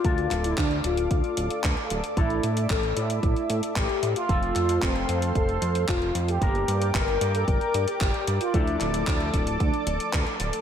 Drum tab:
HH |xxxxxxxxxxxxxxxx|xxxxxxxxxxxxxxxx|xxxxxxxxxxxxxxxx|xxxxxxxxxxxxxxxx|
CP |--x-x-------x---|----x-------x---|--x-x-------x---|----x-------x---|
BD |o---o---o---o---|o---o---o---o---|o---o---o---o---|o---o---o---o---|

HH |xxxxxxxxxxxxxxxx|
CP |--x-x-------x---|
BD |o---o-o-o---o---|